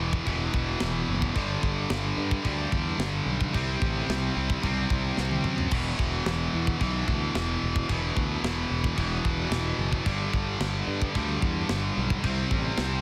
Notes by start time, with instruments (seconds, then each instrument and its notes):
Already playing: distorted electric guitar E2 B2 E3
0.00 picked electric bass E1
0.13 kick
0.26 picked electric bass E1, distorted electric guitar E2 B2 E3, kick, china
0.54 picked electric bass E1, kick
0.80 picked electric bass E1, snare, china
1.08 picked electric bass F#1
1.22 kick
1.35 picked electric bass G1, distorted electric guitar G2 D3 G3, kick, china
1.63 picked electric bass G1, kick
1.90 picked electric bass G1, snare, china
2.18 picked electric bass G2
2.31 kick
2.44 picked electric bass D2, distorted electric guitar G2 D3 G3, kick, china
2.72 picked electric bass E2, kick
2.99 picked electric bass G1, snare, china
3.26 picked electric bass B1
3.41 kick
3.53 picked electric bass C2, distorted electric guitar C3 G3 C4, kick, china
3.81 picked electric bass A1, kick
4.09 picked electric bass C2, snare, china
4.36 picked electric bass C2
4.50 kick
4.62 picked electric bass C2, distorted electric guitar C3 G3 C4, kick, china
4.90 picked electric bass C2, kick
5.17 picked electric bass C2, snare
5.31 high tom
5.44 picked electric bass F#2, mid tom
5.58 floor tom
5.71 picked electric bass E1, distorted electric guitar E2 B2 E3, kick, china, crash
5.99 picked electric bass E1, kick
6.26 picked electric bass E1, snare, china
6.54 picked electric bass E2
6.67 kick
6.79 picked electric bass B1, distorted electric guitar E2 B2 E3, kick, china
7.08 picked electric bass D2, kick
7.35 picked electric bass E1, snare, china
7.63 picked electric bass E1
7.76 kick
7.89 picked electric bass E1, distorted electric guitar E2 B2 E3, kick, china
8.17 picked electric bass D2, kick
8.43 picked electric bass E1, snare, china
8.71 picked electric bass E1
8.84 kick
8.96 picked electric bass E1, distorted electric guitar E2 B2 E3, kick, china
9.25 picked electric bass E1, kick
9.51 picked electric bass E1, snare, china
9.79 picked electric bass F#1
9.93 kick
10.05 picked electric bass G1, distorted electric guitar G2 D3 G3, kick, china
10.33 picked electric bass G1, kick
10.60 picked electric bass G1, snare, china
10.87 picked electric bass G2
11.02 kick
11.15 picked electric bass D2, distorted electric guitar G2 D3 G3, kick, china
11.42 picked electric bass E2, kick
11.69 picked electric bass G1, snare, china
11.97 picked electric bass B1
12.10 kick
12.23 picked electric bass C2, distorted electric guitar C3 G3 C4, kick, china
12.51 picked electric bass A1, kick
12.78 picked electric bass C2, snare, china